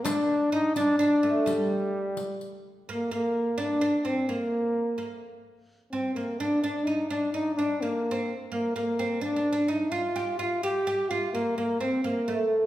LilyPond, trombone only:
\new Staff \with { instrumentName = "Trombone" } { \time 6/8 \key bes \major \tempo 4. = 85 d'4 ees'8 d'8 d'4 | g2~ g8 r8 | bes8 bes4 d'8.~ d'32 d'32 c'8 | bes2 r4 |
r8 c'8 bes8 d'8 d'8 ees'8 | d'8 ees'8 d'8 bes4~ bes32 r16. | bes8 bes4 d'4 ees'8 | f'4 f'8 g'4 f'8 |
bes8 bes8 c'8 bes4 r8 | }